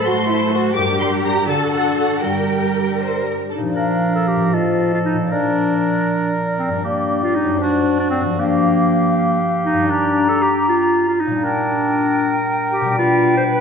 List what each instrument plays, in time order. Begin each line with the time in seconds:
Already playing: harp A2 F#3 C5
0.06 viola section A3, violin section F#4 A4 C6, cello section F#4, harp F#5
0.29 cello section E4, violin section A4 C5, harp C5
0.53 violin section F#4 A4, cello section F#4, harp F#4
0.76 harp G2, viola section G3, violin section G4 A#4 D6, cello section G4
1.01 harp G3, violin section C6
1.24 harp D4 A#4, violin section A#5
1.48 viola section D3, harp D3, violin section F#4 A4 A5, cello section A4
1.74 harp D4, violin section F#5
1.98 harp D4 A4, violin section F#5
2.24 harp G2, viola section G3, violin section G4 A#4 G5, cello section A#4
2.49 harp G3
2.75 harp A#4
3.00 violin section C5, harp D5
3.24 violin section A#4, harp A#4
3.50 harp D4, clarinet D#4, violin section A4
3.58 harp A#2
3.62 harp F3
3.67 harp D4
3.72 clarinet D4, harp A#4
3.76 oboe A#4, flute F5, triangle
4.15 clarinet A4
4.28 clarinet G4
4.36 harp A2
4.40 harp F3
4.45 harp D#4
4.49 harp C5
4.53 clarinet F4, oboe A4, flute D#5
4.94 clarinet F4
5.05 clarinet D#4
5.13 harp A#2
5.17 harp F3
5.22 harp D4
5.27 harp D5
5.32 clarinet D4, oboe A#4, flute D5
6.58 clarinet C4
6.68 harp G2
6.72 harp G3
6.77 harp D4
6.81 clarinet A#3, oboe G4, harp D5
7.23 clarinet F4
7.35 clarinet D#4
7.44 harp F#2
7.49 harp A3
7.53 harp D4
7.58 clarinet D4, harp C5
7.63 oboe F#4
8.00 clarinet D4
8.10 clarinet C4
8.21 harp G2
8.25 harp F3
8.30 harp D4
8.34 clarinet A#3, harp A#4
8.39 oboe G4, flute F5
9.65 clarinet D#4
9.73 harp G2
9.78 harp G3
9.82 harp D4
9.87 clarinet D4, harp A#4, flute A#5
10.28 clarinet A4
10.42 clarinet G4
10.69 clarinet F4
11.08 clarinet F4
11.20 clarinet D#4
11.27 harp A#2
11.31 harp G3
11.35 harp D4
11.40 harp G4, oboe A#4, flute G5
11.44 clarinet D4
12.72 clarinet G4
12.81 harp B2
12.86 harp G3
12.90 harp D4
12.95 clarinet F4, harp G4, oboe B4
13.37 clarinet C5
13.50 clarinet B4